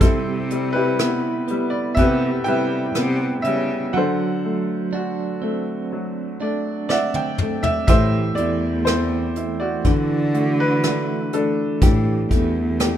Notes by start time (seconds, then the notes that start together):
Already playing: B3 D4
0.01 C3 G3 C4 E4 A4, kick, closed hi-hat
0.50 G3, closed hi-hat
0.73 E4 G4 B4
0.99 B3 E4, cross-stick, closed hi-hat
1.48 G3 B3, closed hi-hat
1.70 D5
1.95 C3 G4 B4 E5, kick, closed hi-hat
2.00 B3
2.44 C3 G3 E4 B4 E5 G5, closed hi-hat
2.94 C3 B3, cross-stick, closed hi-hat
3.42 C#3 E5, closed hi-hat
3.47 G3
3.93 D3 F#3 A4 C5 F#5
4.45 A3
4.93 D4 F#4
5.42 A3 C4
5.92 F#3
6.41 A3 D4 D5
6.89 C4 D5 E5 F#5, snare
7.14 G5, high tom
7.38 A3, mid tom
7.63 E5, floor tom
7.87 A2 E3 A3 G4 C5 E5, kick, closed hi-hat
8.35 E2 A3 E4 D5, closed hi-hat
8.85 A3 C4 C5, cross-stick, closed hi-hat
9.36 E4, closed hi-hat
9.60 F#4 D5
9.85 D3 E3, kick, closed hi-hat
10.33 A3 F#4, closed hi-hat
10.60 B4
10.83 D3 A3, cross-stick, closed hi-hat
11.33 A3 D4 A4, closed hi-hat
11.82 A2 E3 A3 G4, kick, closed hi-hat
12.31 E2 A3, kick, closed hi-hat
12.80 A3 D4 G4, cross-stick, closed hi-hat